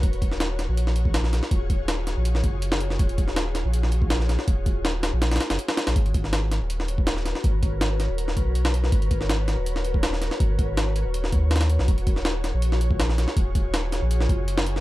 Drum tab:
HH |x-x-x---x---x---x---x---x---x---|x---x---x---x---x---x---x---x---|x-x-x---x---x---x---x---x---x---|x---x---x---x---x-xxx-x-x---x-x-|
SD |------o-o---o-----o-----o-o-o-o-|--------o---o-----o-------o---o-|------o-o---o-----o-----o-o-o-o-|--------o---o---o-ooo-o---o-o-o-|
BD |o---o-----------------o---------|o---o---------------o-----------|o---o-----------------o---------|o---o---------------------------|

HH |x-x-x---x---x---x---x---x---x---|x---x---x---x---x---x---x---x---|x-x-x---x---x---x---x---x---x---|x---x---x---x---x---x---xxx-x---|
SD |------o-o---o-----o-----o-o-o-o-|--------o---o-----o-------o---o-|------o-o---o-----o-----o-o-o-o-|--------o---------o-----ooo---o-|
BD |o---o-----------------o---------|o---o---------------o-----------|o---o-----------------o---------|o---o---------------o-----------|

HH |x-x-x---x---x---x---x---x---x---|x---x---x---x---x---x---x---x---|
SD |------o-o---o-----o-----o-o-o-o-|--------o---o-----o-------o---o-|
BD |o---o-----------------o---------|o---o---------------o-----------|